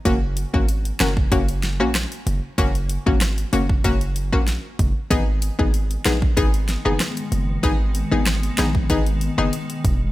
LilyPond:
<<
  \new Staff \with { instrumentName = "Synth pluck" } { \time 4/4 \key gis \minor \tempo 4 = 95 <ais cis' fis'>16 r8 <ais cis' fis'>16 r8 <ais cis' fis'>16 r16 <ais cis' fis'>16 r8 <ais cis' fis'>16 r4 | <ais cis' fis'>16 r8 <ais cis' fis'>16 r8 <ais cis' fis'>16 r16 <ais cis' fis'>16 r8 <ais cis' fis'>16 r4 | <b dis' gis'>16 r8 <b dis' gis'>16 r8 <b dis' gis'>16 r16 <b dis' gis'>16 r8 <b dis' gis'>16 r4 | <b dis' gis'>16 r8 <b dis' gis'>16 r8 <b dis' gis'>16 r16 <b dis' gis'>16 r8 <b dis' gis'>16 r4 | }
  \new Staff \with { instrumentName = "Ambient pad" } { \clef bass \time 4/4 \key gis \minor r1 | r1 | <dis gis b>1~ | <dis gis b>1 | }
  \new Staff \with { instrumentName = "808-style bass" } { \clef bass \time 4/4 \key gis \minor fis,,8. gis,,8. fis,,8 fis,,8. ais,,8 r16 fis,,16 r16 | fis,,8. gis,,8. fis,,8 fis,,8. ais,,8 r16 fis,,16 r16 | gis,,8. gis,,8. ais,,8 gis,,8. fis,,16 r8 fis,,8 | gis,,8. gis,,8. ais,,8 gis,,8. fis,,16 r8 e,,8 | }
  \new DrumStaff \with { instrumentName = "Drums" } \drummode { \time 4/4 <hh bd>8 hh16 bd16 hh16 hh16 <hh ss sn>16 bd16 <hh bd>16 hh16 <hh sn>16 ss16 <hh ss sn>16 hh16 hh8 | <hh bd>16 hh16 hh16 bd16 <hh ss sn>16 hh16 hh16 bd16 <hh bd>16 hh16 hh16 <bd ss>16 <hh sn>8 <hh bd>8 | <hh bd>8 hh16 bd16 hh16 hh16 <hh ss sn>16 bd16 <hh bd>16 hh16 <hh sn>16 ss16 <hh ss sn>16 hh16 hh8 | <hh bd>8 hh8 <hh ss sn>16 hh16 <hh ss sn>16 bd16 <hh bd>16 hh16 hh16 ss16 hh16 hh16 <hh bd>8 | }
>>